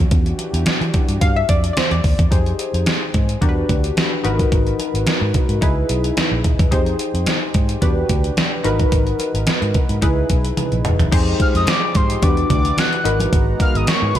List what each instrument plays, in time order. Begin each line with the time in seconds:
0.11 fingered electric bass E2, analog synth pad E3 D4 F#4 G4, kick, closed hi-hat
0.26 closed hi-hat
0.39 closed hi-hat, muted conga
0.53 fingered electric bass E2, closed hi-hat
0.66 muted fingered electric bass stroke, snare, closed hi-hat, high conga
0.81 fingered electric bass E3, closed hi-hat
0.94 kick, closed hi-hat, muted conga
1.08 fingered electric bass G2, closed hi-hat
1.21 fingered electric bass G2, analog polysynth F5, kick, closed hi-hat, muted conga
1.36 analog polysynth E5
1.49 fingered electric bass F2, analog polysynth D5, kick, closed hi-hat
1.64 closed hi-hat
1.73 analog polysynth C5 D5, closed hi-hat, high conga
1.77 snare
1.91 fingered electric bass E2, analog polysynth D5, closed hi-hat
2.04 fingered electric bass D#2, kick, open hi-hat
2.19 fingered electric bass E2, kick, closed hi-hat, high conga
2.31 fingered electric bass F2, analog polysynth D#4 G4 G#4 C5, kick, closed hi-hat
2.46 closed hi-hat
2.59 closed hi-hat
2.74 fingered electric bass F2, closed hi-hat
2.86 snare, closed hi-hat, high conga
3.14 fingered electric bass G#2, kick, closed hi-hat, muted conga
3.29 closed hi-hat
3.41 fingered electric bass E2, analog polysynth D4 F#4 G4 A#4, kick, closed hi-hat, muted conga, low conga
3.49 analog polysynth B4
3.69 fingered electric bass D2, kick, closed hi-hat, low conga
3.84 closed hi-hat
3.97 snare, closed hi-hat, high conga
4.23 fingered electric bass G#1, analog polysynth D#4 F#4 A#4 B4, closed hi-hat
4.39 kick, closed hi-hat, high conga
4.52 fingered electric bass G#1, kick, closed hi-hat
4.67 closed hi-hat
4.79 closed hi-hat, muted conga
4.94 fingered electric bass G#1, closed hi-hat
5.06 muted fingered electric bass stroke, snare, closed hi-hat, high conga
5.21 fingered electric bass G#2
5.34 kick, closed hi-hat, muted conga, low conga
5.49 fingered electric bass G#2, closed hi-hat
5.61 fingered electric bass C#2, analog polysynth D#4 E4 G#4 B4, kick, closed hi-hat, muted conga
5.89 fingered electric bass B1, closed hi-hat
6.04 closed hi-hat
6.17 snare, closed hi-hat, high conga
6.32 fingered electric bass A#1
6.44 fingered electric bass D#1, kick, closed hi-hat
6.59 fingered electric bass E1, kick, closed hi-hat, high conga
6.71 fingered electric bass F2, analog polysynth D#4 G4 G#4 C5, kick, closed hi-hat
6.86 closed hi-hat
6.99 closed hi-hat
7.14 fingered electric bass F2, closed hi-hat
7.26 snare, closed hi-hat, high conga
7.54 fingered electric bass G#2, kick, closed hi-hat, muted conga
7.69 closed hi-hat
7.82 fingered electric bass E2, analog polysynth D4 F#4 G4 B4, kick, closed hi-hat, muted conga, low conga
8.09 fingered electric bass D2, kick, closed hi-hat, low conga
8.24 closed hi-hat
8.37 snare, closed hi-hat, high conga
8.63 fingered electric bass G#1, analog polysynth D#4 F#4 A#4 B4, closed hi-hat
8.79 kick, closed hi-hat, high conga
8.92 fingered electric bass G#1, kick, closed hi-hat
9.07 closed hi-hat
9.19 closed hi-hat, muted conga
9.34 fingered electric bass G#1, closed hi-hat
9.47 snare, closed hi-hat, high conga
9.62 fingered electric bass G#2, closed hi-hat
9.74 kick, closed hi-hat, muted conga, low conga
9.89 fingered electric bass G#2, closed hi-hat
10.01 fingered electric bass C#2, analog polysynth D#4 E4 G#4 B4, kick, closed hi-hat, muted conga
10.30 fingered electric bass B1, kick, closed hi-hat
10.45 closed hi-hat
10.57 closed hi-hat, high tom, high conga
10.72 fingered electric bass A#1, closed hi-hat
10.85 fingered electric bass D#1, closed hi-hat, mid tom
10.99 fingered electric bass E1, closed hi-hat, floor tom, high conga
11.11 fingered electric bass F2, analog synth pad F3 G#3 D#4, analog polysynth D#4 G4 G#4 C5, kick, closed hi-hat, crash
11.40 analog synth lead F6, kick, closed hi-hat
11.54 fingered electric bass F2, analog synth lead D#6, closed hi-hat
11.67 analog synth lead D6, snare, closed hi-hat, high conga
11.95 fingered electric bass G#2, analog synth lead C6, kick, closed hi-hat, muted conga
12.10 closed hi-hat
12.22 fingered electric bass E2, analog synth pad E3 D4 F#5, analog polysynth D4 F#4 G4 B4, analog synth lead D6, kick, closed hi-hat, muted conga, low conga
12.37 closed hi-hat
12.50 fingered electric bass D2, analog synth lead D6, kick, closed hi-hat, low conga
12.65 closed hi-hat
12.77 analog synth lead F#6, snare, closed hi-hat, high conga
12.93 closed hi-hat
13.04 fingered electric bass G#1, analog synth pad G#3 B3 A#5, analog polysynth D#4 F#4 A#4 B4, closed hi-hat
13.20 closed hi-hat, high conga
13.33 fingered electric bass G#1, kick, closed hi-hat
13.60 analog synth lead F6, kick, closed hi-hat, muted conga
13.74 fingered electric bass G#1, analog synth lead D#6, closed hi-hat
13.87 analog synth lead C#6, snare, closed hi-hat, high conga
14.02 fingered electric bass G#2
14.15 analog synth lead B5, closed hi-hat, muted conga, low conga